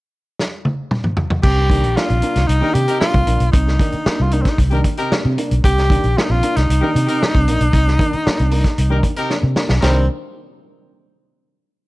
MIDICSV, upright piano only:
0, 0, Header, 1, 2, 480
1, 0, Start_track
1, 0, Key_signature, -3, "minor"
1, 0, Tempo, 524017
1, 1321, Time_signature, 4, 2, 24, 8
1, 10879, End_track
2, 0, Start_track
2, 0, Title_t, "Upright piano"
2, 0, Program_c, 0, 0
2, 1312, Note_on_c, 0, 48, 54
2, 1433, Note_off_c, 0, 48, 0
2, 1440, Note_on_c, 0, 62, 26
2, 1442, Note_on_c, 0, 58, 25
2, 1488, Note_off_c, 0, 62, 0
2, 1489, Note_off_c, 0, 58, 0
2, 1554, Note_on_c, 0, 51, 67
2, 1554, Note_on_c, 0, 58, 64
2, 1559, Note_on_c, 0, 62, 75
2, 1674, Note_off_c, 0, 51, 0
2, 1674, Note_off_c, 0, 58, 0
2, 1677, Note_off_c, 0, 62, 0
2, 1794, Note_on_c, 0, 58, 66
2, 1800, Note_on_c, 0, 62, 80
2, 1914, Note_off_c, 0, 58, 0
2, 1917, Note_on_c, 0, 48, 48
2, 1918, Note_off_c, 0, 62, 0
2, 2036, Note_off_c, 0, 48, 0
2, 2037, Note_on_c, 0, 58, 70
2, 2043, Note_on_c, 0, 62, 73
2, 2156, Note_off_c, 0, 58, 0
2, 2159, Note_off_c, 0, 62, 0
2, 2396, Note_on_c, 0, 51, 73
2, 2398, Note_on_c, 0, 58, 74
2, 2402, Note_on_c, 0, 62, 80
2, 2515, Note_off_c, 0, 51, 0
2, 2516, Note_off_c, 0, 58, 0
2, 2518, Note_off_c, 0, 62, 0
2, 2639, Note_on_c, 0, 48, 62
2, 2755, Note_on_c, 0, 58, 68
2, 2757, Note_off_c, 0, 48, 0
2, 2761, Note_on_c, 0, 62, 73
2, 2875, Note_off_c, 0, 58, 0
2, 2876, Note_on_c, 0, 48, 63
2, 2878, Note_off_c, 0, 62, 0
2, 2994, Note_on_c, 0, 58, 68
2, 2995, Note_off_c, 0, 48, 0
2, 2998, Note_on_c, 0, 62, 72
2, 3114, Note_off_c, 0, 58, 0
2, 3116, Note_off_c, 0, 62, 0
2, 3244, Note_on_c, 0, 48, 57
2, 3359, Note_off_c, 0, 48, 0
2, 3362, Note_on_c, 0, 58, 25
2, 3362, Note_on_c, 0, 62, 25
2, 3409, Note_off_c, 0, 58, 0
2, 3409, Note_off_c, 0, 62, 0
2, 3480, Note_on_c, 0, 51, 69
2, 3482, Note_on_c, 0, 58, 63
2, 3483, Note_on_c, 0, 62, 74
2, 3597, Note_off_c, 0, 51, 0
2, 3598, Note_off_c, 0, 58, 0
2, 3599, Note_off_c, 0, 62, 0
2, 3722, Note_on_c, 0, 58, 69
2, 3729, Note_on_c, 0, 62, 74
2, 3838, Note_off_c, 0, 58, 0
2, 3842, Note_off_c, 0, 62, 0
2, 3854, Note_on_c, 0, 48, 51
2, 3963, Note_on_c, 0, 58, 78
2, 3964, Note_off_c, 0, 48, 0
2, 3969, Note_on_c, 0, 62, 80
2, 4079, Note_off_c, 0, 58, 0
2, 4081, Note_off_c, 0, 62, 0
2, 4322, Note_on_c, 0, 51, 79
2, 4323, Note_on_c, 0, 58, 67
2, 4328, Note_on_c, 0, 62, 83
2, 4438, Note_off_c, 0, 51, 0
2, 4439, Note_off_c, 0, 58, 0
2, 4441, Note_off_c, 0, 62, 0
2, 4565, Note_on_c, 0, 48, 57
2, 4679, Note_off_c, 0, 48, 0
2, 4680, Note_on_c, 0, 58, 57
2, 4687, Note_on_c, 0, 62, 70
2, 4797, Note_off_c, 0, 58, 0
2, 4800, Note_off_c, 0, 62, 0
2, 4809, Note_on_c, 0, 48, 58
2, 4921, Note_off_c, 0, 48, 0
2, 4926, Note_on_c, 0, 58, 70
2, 4932, Note_on_c, 0, 62, 80
2, 5039, Note_off_c, 0, 58, 0
2, 5043, Note_off_c, 0, 62, 0
2, 5175, Note_on_c, 0, 48, 58
2, 5284, Note_off_c, 0, 48, 0
2, 5288, Note_on_c, 0, 58, 26
2, 5291, Note_on_c, 0, 62, 25
2, 5332, Note_off_c, 0, 58, 0
2, 5333, Note_off_c, 0, 62, 0
2, 5401, Note_on_c, 0, 51, 75
2, 5401, Note_on_c, 0, 58, 58
2, 5407, Note_on_c, 0, 62, 75
2, 5517, Note_off_c, 0, 51, 0
2, 5517, Note_off_c, 0, 58, 0
2, 5520, Note_off_c, 0, 62, 0
2, 5652, Note_on_c, 0, 58, 68
2, 5657, Note_on_c, 0, 62, 68
2, 5762, Note_off_c, 0, 58, 0
2, 5765, Note_off_c, 0, 62, 0
2, 5775, Note_on_c, 0, 48, 49
2, 5884, Note_off_c, 0, 48, 0
2, 5888, Note_on_c, 0, 58, 66
2, 5894, Note_on_c, 0, 62, 78
2, 6000, Note_off_c, 0, 58, 0
2, 6003, Note_off_c, 0, 62, 0
2, 6250, Note_on_c, 0, 51, 77
2, 6253, Note_on_c, 0, 58, 76
2, 6256, Note_on_c, 0, 62, 82
2, 6361, Note_off_c, 0, 51, 0
2, 6363, Note_off_c, 0, 58, 0
2, 6364, Note_off_c, 0, 62, 0
2, 6496, Note_on_c, 0, 48, 65
2, 6604, Note_off_c, 0, 48, 0
2, 6610, Note_on_c, 0, 58, 60
2, 6613, Note_on_c, 0, 62, 67
2, 6721, Note_off_c, 0, 58, 0
2, 6722, Note_off_c, 0, 62, 0
2, 6733, Note_on_c, 0, 48, 61
2, 6842, Note_off_c, 0, 48, 0
2, 6853, Note_on_c, 0, 58, 73
2, 6859, Note_on_c, 0, 62, 73
2, 6962, Note_off_c, 0, 58, 0
2, 6965, Note_off_c, 0, 62, 0
2, 7084, Note_on_c, 0, 48, 53
2, 7198, Note_off_c, 0, 48, 0
2, 7203, Note_on_c, 0, 58, 21
2, 7205, Note_on_c, 0, 62, 25
2, 7249, Note_off_c, 0, 58, 0
2, 7249, Note_off_c, 0, 62, 0
2, 7323, Note_on_c, 0, 51, 76
2, 7324, Note_on_c, 0, 58, 56
2, 7327, Note_on_c, 0, 62, 74
2, 7437, Note_off_c, 0, 51, 0
2, 7438, Note_off_c, 0, 58, 0
2, 7439, Note_off_c, 0, 62, 0
2, 7562, Note_on_c, 0, 58, 72
2, 7569, Note_on_c, 0, 62, 72
2, 7677, Note_off_c, 0, 58, 0
2, 7680, Note_off_c, 0, 62, 0
2, 7684, Note_on_c, 0, 48, 53
2, 7797, Note_off_c, 0, 48, 0
2, 7800, Note_on_c, 0, 58, 67
2, 7806, Note_on_c, 0, 62, 70
2, 7915, Note_off_c, 0, 58, 0
2, 7919, Note_off_c, 0, 62, 0
2, 8153, Note_on_c, 0, 51, 73
2, 8156, Note_on_c, 0, 58, 67
2, 8159, Note_on_c, 0, 62, 80
2, 8272, Note_off_c, 0, 51, 0
2, 8273, Note_off_c, 0, 58, 0
2, 8275, Note_off_c, 0, 62, 0
2, 8395, Note_on_c, 0, 48, 59
2, 8512, Note_on_c, 0, 58, 56
2, 8513, Note_off_c, 0, 48, 0
2, 8521, Note_on_c, 0, 62, 69
2, 8631, Note_off_c, 0, 58, 0
2, 8634, Note_on_c, 0, 48, 61
2, 8636, Note_off_c, 0, 62, 0
2, 8752, Note_off_c, 0, 48, 0
2, 8757, Note_on_c, 0, 58, 71
2, 8765, Note_on_c, 0, 62, 71
2, 8874, Note_off_c, 0, 58, 0
2, 8878, Note_off_c, 0, 62, 0
2, 8989, Note_on_c, 0, 51, 79
2, 8997, Note_on_c, 0, 58, 70
2, 9001, Note_on_c, 0, 62, 99
2, 9172, Note_off_c, 0, 51, 0
2, 9176, Note_off_c, 0, 58, 0
2, 9178, Note_off_c, 0, 62, 0
2, 10879, End_track
0, 0, End_of_file